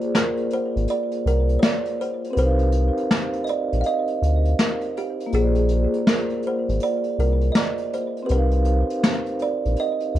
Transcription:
0.00 2.29 A#3 medium
0.00 2.31 F4 medium
0.00 0.17 G#4 medium
0.00 2.33 G#4 medium
0.00 2.35 C5 medium
0.00 2.36 D5 medium
0.00 closed hi-hat soft
0.15 0.50 A#4 medium
0.15 snare loud
0.15 closed hi-hat medium
0.37 closed hi-hat soft
0.50 0.90 C5 medium
0.50 closed hi-hat medium
0.76 0.87 G#1 medium
0.76 closed hi-hat soft
0.88 1.24 D5 medium
0.88 closed hi-hat medium
1.11 closed hi-hat soft
1.26 1.58 C2 medium
1.26 1.59 A#4 medium
1.26 closed hi-hat medium
1.49 closed hi-hat soft
1.59 1.63 C#5 medium
1.59 snare loud
1.59 closed hi-hat medium
1.64 2.01 D5 medium
1.85 closed hi-hat soft
2.01 2.33 C5 medium
2.01 closed hi-hat medium
2.24 closed hi-hat soft
2.31 5.26 C4 medium
2.31 5.27 G4 medium
2.31 2.37 B4 medium
2.36 2.91 C2 loud
2.36 5.28 A#4 medium
2.36 3.47 C5 loud
2.36 5.30 C5 medium
2.36 closed hi-hat medium
2.42 5.32 D#4 medium
2.42 5.33 F5 medium
2.59 closed hi-hat soft
2.72 closed hi-hat medium
2.97 closed hi-hat soft
3.11 snare loud
3.11 closed hi-hat medium
3.33 closed hi-hat soft
3.44 3.48 D#5 medium
3.44 closed hi-hat medium
3.49 3.81 D5 medium
3.73 3.83 A#1 medium
3.73 closed hi-hat soft
3.81 3.85 F5 medium
3.81 closed hi-hat medium
3.86 4.62 D#5 loud
4.08 closed hi-hat soft
4.22 4.54 D2 medium
4.22 closed hi-hat medium
4.45 closed hi-hat soft
4.58 4.97 A#4 medium
4.58 snare loud
4.58 closed hi-hat medium
4.81 closed hi-hat soft
4.97 5.31 G4 medium
4.97 closed hi-hat medium
5.20 closed hi-hat soft
5.26 8.22 A#3 medium
5.26 8.23 F4 medium
5.32 5.87 A#1 loud
5.32 8.25 G#4 medium
5.32 6.10 G#4 loud
5.32 closed hi-hat medium
5.37 8.27 C5 medium
5.37 8.29 D5 medium
5.55 closed hi-hat soft
5.68 closed hi-hat medium
5.93 closed hi-hat soft
6.07 6.46 A#4 medium
6.07 snare loud
6.07 closed hi-hat medium
6.30 closed hi-hat soft
6.42 closed hi-hat medium
6.47 6.63 C5 medium
6.69 6.80 G#1 medium
6.69 closed hi-hat soft
6.80 7.16 D5 medium
6.80 closed hi-hat medium
7.04 closed hi-hat soft
7.19 7.51 C2 medium
7.19 7.52 A#4 medium
7.19 closed hi-hat medium
7.41 closed hi-hat soft
7.52 7.56 D#5 medium
7.52 snare loud
7.52 closed hi-hat medium
7.57 7.94 D5 medium
7.78 closed hi-hat soft
7.93 8.26 C5 medium
7.93 closed hi-hat medium
8.17 closed hi-hat soft
8.23 10.19 C4 medium
8.23 10.19 G4 medium
8.23 8.30 B4 medium
8.28 8.84 C2 loud
8.28 10.19 A#4 medium
8.28 10.19 C5 medium
8.28 9.44 C5 medium
8.28 closed hi-hat medium
8.34 10.19 D#4 medium
8.34 10.19 F5 medium
8.51 closed hi-hat soft
8.65 closed hi-hat medium
8.90 closed hi-hat medium
9.03 snare loud
9.03 closed hi-hat medium
9.26 closed hi-hat soft
9.39 9.76 D5 medium
9.39 closed hi-hat medium
9.65 9.76 A#1 medium
9.65 closed hi-hat soft
9.76 10.19 D#5 medium
9.76 closed hi-hat medium
10.00 closed hi-hat soft
10.15 10.19 D2 medium
10.15 closed hi-hat medium

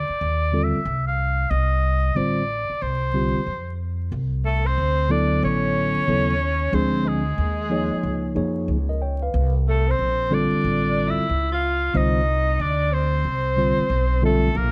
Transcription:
0.00 0.65 D5 medium
0.09 muted upright bass stroke soft
0.21 0.71 D#2 medium
0.52 0.78 D3 medium
0.52 0.78 G3 medium
0.52 0.79 C4 medium
0.52 0.79 F4 soft
0.52 0.79 A4 medium
0.64 1.06 E5 medium
0.74 muted upright bass stroke soft
0.85 1.48 C2 medium
1.07 1.52 F5 medium
1.50 2.13 C2 loud
1.50 2.18 D#5 loud
2.15 2.67 A1 medium
2.15 2.41 D3 medium
2.15 2.41 G3 medium
2.15 2.41 C4 medium
2.15 2.42 F4 medium
2.15 2.42 C5 medium
2.15 2.84 D5 medium
2.70 muted upright bass stroke soft
2.82 3.32 C2 medium
2.82 3.80 C5 medium
3.13 3.39 D3 medium
3.13 3.39 G3 medium
3.13 3.39 C4 medium
3.13 3.40 F4 medium
3.13 3.40 G4 medium
3.35 muted upright bass stroke soft
3.46 4.08 F2 medium
4.12 4.74 C2 medium
4.45 4.67 A3 medium
4.45 4.68 A4 medium
4.65 5.12 C4 medium
4.65 5.13 C5 loud
4.78 5.39 D2 medium
5.09 6.02 D3 medium
5.09 6.03 F#3 medium
5.09 6.03 B3 medium
5.09 5.42 D4 medium
5.09 6.03 E4 medium
5.09 6.03 A4 medium
5.09 5.43 D5 medium
5.43 5.93 A1 medium
5.43 6.75 C#4 medium
5.43 6.77 C#5 loud
5.96 muted upright bass stroke soft
6.07 6.70 D#2 medium
6.07 6.33 C#3 medium
6.07 6.33 F#3 medium
6.07 6.33 B3 medium
6.07 6.33 E4 medium
6.07 6.34 A4 medium
6.72 7.35 D2 loud
6.72 7.22 F3 medium
6.72 7.22 G#3 medium
6.72 7.22 C4 medium
6.72 7.07 C4 medium
6.72 7.22 D4 medium
6.72 7.22 G#4 medium
6.72 7.10 C5 loud
7.06 8.36 G#3 medium
7.06 8.37 G#4 medium
7.38 7.88 D#2 medium
7.70 8.34 F3 medium
7.70 8.34 A#3 medium
7.70 8.35 D#4 medium
7.70 8.35 G#4 medium
7.70 8.36 C#5 medium
7.91 muted upright bass stroke soft
8.03 8.34 C#2 medium
8.35 8.67 F2 medium
8.35 8.76 F3 medium
8.35 8.76 A#3 medium
8.35 8.77 D#4 medium
8.35 8.77 G#4 medium
8.35 8.69 C#5 medium
8.68 9.30 C#2 medium
8.89 9.01 A#4 medium
8.89 9.01 D#5 medium
9.02 9.21 C#5 medium
9.02 9.21 G5 medium
9.22 9.53 B4 medium
9.22 9.53 F5 medium
9.34 9.96 C2 loud
9.68 9.89 A3 medium
9.68 9.92 A4 medium
9.88 10.34 C4 medium
9.88 10.36 C5 medium
9.99 10.49 A#1 medium
10.30 11.24 D3 medium
10.30 11.24 G3 medium
10.30 11.24 C4 medium
10.30 11.09 D4 medium
10.30 11.25 F4 medium
10.30 11.25 A4 medium
10.34 11.12 D5 loud
10.52 muted upright bass stroke soft
10.64 11.15 A1 medium
11.08 11.51 E4 medium
11.08 11.52 E5 loud
11.17 muted upright bass stroke soft
11.29 11.91 C#2 medium
11.52 11.96 F4 medium
11.52 11.99 F5 loud
11.93 12.56 C2 medium
11.93 12.19 D3 medium
11.93 12.20 G3 medium
11.93 12.20 C4 medium
11.93 12.62 D#4 medium
11.93 12.20 F4 medium
11.93 12.20 C5 medium
11.93 12.63 D#5 loud
12.60 13.22 D2 medium
12.60 12.94 D4 medium
12.60 12.95 D5 loud
12.92 14.23 C4 medium
12.92 14.24 C5 medium
13.25 13.75 C2 medium
13.57 13.83 D3 medium
13.57 13.83 G3 medium
13.57 13.83 C4 medium
13.57 13.83 F4 medium
13.57 13.84 C5 medium
13.78 muted upright bass stroke soft
13.90 14.52 B1 medium
14.22 14.48 D3 medium
14.22 14.48 G3 medium
14.22 14.58 A3 medium
14.22 14.48 C4 medium
14.22 14.48 F4 medium
14.22 14.49 A4 medium
14.22 14.59 A4 medium
14.55 14.72 A#1 loud
14.55 14.72 A#3 medium
14.55 14.72 A#4 loud

